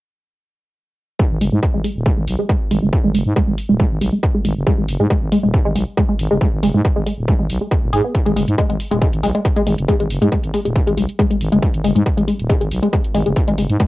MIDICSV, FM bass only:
0, 0, Header, 1, 2, 480
1, 0, Start_track
1, 0, Key_signature, 5, "minor"
1, 0, Tempo, 434783
1, 1315, Time_signature, 4, 2, 24, 8
1, 15312, End_track
2, 0, Start_track
2, 0, Title_t, "FM bass"
2, 0, Program_c, 0, 39
2, 1442, Note_on_c, 0, 32, 96
2, 1521, Note_off_c, 0, 32, 0
2, 1555, Note_on_c, 0, 30, 80
2, 1644, Note_off_c, 0, 30, 0
2, 1682, Note_on_c, 0, 44, 82
2, 1761, Note_off_c, 0, 44, 0
2, 1922, Note_on_c, 0, 32, 91
2, 2001, Note_off_c, 0, 32, 0
2, 2162, Note_on_c, 0, 27, 78
2, 2326, Note_off_c, 0, 27, 0
2, 2401, Note_on_c, 0, 32, 93
2, 2481, Note_off_c, 0, 32, 0
2, 2515, Note_on_c, 0, 35, 79
2, 2603, Note_off_c, 0, 35, 0
2, 2996, Note_on_c, 0, 32, 99
2, 3084, Note_off_c, 0, 32, 0
2, 3122, Note_on_c, 0, 30, 90
2, 3201, Note_off_c, 0, 30, 0
2, 3362, Note_on_c, 0, 32, 98
2, 3441, Note_off_c, 0, 32, 0
2, 3476, Note_on_c, 0, 30, 82
2, 3564, Note_off_c, 0, 30, 0
2, 3602, Note_on_c, 0, 44, 85
2, 3681, Note_off_c, 0, 44, 0
2, 3842, Note_on_c, 0, 32, 89
2, 3921, Note_off_c, 0, 32, 0
2, 4082, Note_on_c, 0, 27, 81
2, 4246, Note_off_c, 0, 27, 0
2, 4322, Note_on_c, 0, 32, 94
2, 4401, Note_off_c, 0, 32, 0
2, 4435, Note_on_c, 0, 35, 83
2, 4524, Note_off_c, 0, 35, 0
2, 4916, Note_on_c, 0, 32, 102
2, 5004, Note_off_c, 0, 32, 0
2, 5042, Note_on_c, 0, 30, 88
2, 5121, Note_off_c, 0, 30, 0
2, 5283, Note_on_c, 0, 32, 95
2, 5361, Note_off_c, 0, 32, 0
2, 5395, Note_on_c, 0, 30, 80
2, 5484, Note_off_c, 0, 30, 0
2, 5523, Note_on_c, 0, 44, 81
2, 5601, Note_off_c, 0, 44, 0
2, 5762, Note_on_c, 0, 32, 93
2, 5841, Note_off_c, 0, 32, 0
2, 6002, Note_on_c, 0, 27, 82
2, 6166, Note_off_c, 0, 27, 0
2, 6241, Note_on_c, 0, 32, 90
2, 6321, Note_off_c, 0, 32, 0
2, 6356, Note_on_c, 0, 35, 77
2, 6444, Note_off_c, 0, 35, 0
2, 6837, Note_on_c, 0, 32, 98
2, 6924, Note_off_c, 0, 32, 0
2, 6964, Note_on_c, 0, 30, 90
2, 7042, Note_off_c, 0, 30, 0
2, 7203, Note_on_c, 0, 32, 97
2, 7282, Note_off_c, 0, 32, 0
2, 7316, Note_on_c, 0, 30, 78
2, 7404, Note_off_c, 0, 30, 0
2, 7443, Note_on_c, 0, 44, 86
2, 7521, Note_off_c, 0, 44, 0
2, 7682, Note_on_c, 0, 32, 97
2, 7761, Note_off_c, 0, 32, 0
2, 7921, Note_on_c, 0, 27, 79
2, 8085, Note_off_c, 0, 27, 0
2, 8161, Note_on_c, 0, 32, 92
2, 8241, Note_off_c, 0, 32, 0
2, 8275, Note_on_c, 0, 35, 78
2, 8363, Note_off_c, 0, 35, 0
2, 8641, Note_on_c, 0, 27, 98
2, 8721, Note_off_c, 0, 27, 0
2, 8755, Note_on_c, 0, 44, 95
2, 8844, Note_off_c, 0, 44, 0
2, 9121, Note_on_c, 0, 32, 99
2, 9201, Note_off_c, 0, 32, 0
2, 9236, Note_on_c, 0, 30, 79
2, 9324, Note_off_c, 0, 30, 0
2, 9362, Note_on_c, 0, 44, 86
2, 9441, Note_off_c, 0, 44, 0
2, 9601, Note_on_c, 0, 32, 90
2, 9681, Note_off_c, 0, 32, 0
2, 9842, Note_on_c, 0, 27, 81
2, 10006, Note_off_c, 0, 27, 0
2, 10081, Note_on_c, 0, 32, 94
2, 10160, Note_off_c, 0, 32, 0
2, 10194, Note_on_c, 0, 35, 82
2, 10283, Note_off_c, 0, 35, 0
2, 10674, Note_on_c, 0, 32, 99
2, 10763, Note_off_c, 0, 32, 0
2, 10801, Note_on_c, 0, 30, 89
2, 10881, Note_off_c, 0, 30, 0
2, 11041, Note_on_c, 0, 32, 96
2, 11121, Note_off_c, 0, 32, 0
2, 11155, Note_on_c, 0, 30, 81
2, 11243, Note_off_c, 0, 30, 0
2, 11281, Note_on_c, 0, 44, 84
2, 11361, Note_off_c, 0, 44, 0
2, 11521, Note_on_c, 0, 32, 92
2, 11601, Note_off_c, 0, 32, 0
2, 11761, Note_on_c, 0, 27, 83
2, 11925, Note_off_c, 0, 27, 0
2, 12002, Note_on_c, 0, 32, 94
2, 12081, Note_off_c, 0, 32, 0
2, 12116, Note_on_c, 0, 35, 80
2, 12204, Note_off_c, 0, 35, 0
2, 12595, Note_on_c, 0, 32, 96
2, 12684, Note_off_c, 0, 32, 0
2, 12722, Note_on_c, 0, 30, 89
2, 12801, Note_off_c, 0, 30, 0
2, 12961, Note_on_c, 0, 32, 99
2, 13041, Note_off_c, 0, 32, 0
2, 13076, Note_on_c, 0, 30, 83
2, 13164, Note_off_c, 0, 30, 0
2, 13201, Note_on_c, 0, 44, 88
2, 13281, Note_off_c, 0, 44, 0
2, 13442, Note_on_c, 0, 32, 92
2, 13521, Note_off_c, 0, 32, 0
2, 13683, Note_on_c, 0, 27, 83
2, 13846, Note_off_c, 0, 27, 0
2, 13923, Note_on_c, 0, 32, 93
2, 14002, Note_off_c, 0, 32, 0
2, 14037, Note_on_c, 0, 35, 81
2, 14125, Note_off_c, 0, 35, 0
2, 14515, Note_on_c, 0, 32, 94
2, 14603, Note_off_c, 0, 32, 0
2, 14641, Note_on_c, 0, 30, 91
2, 14721, Note_off_c, 0, 30, 0
2, 14882, Note_on_c, 0, 32, 100
2, 14961, Note_off_c, 0, 32, 0
2, 14994, Note_on_c, 0, 30, 80
2, 15083, Note_off_c, 0, 30, 0
2, 15121, Note_on_c, 0, 44, 87
2, 15201, Note_off_c, 0, 44, 0
2, 15312, End_track
0, 0, End_of_file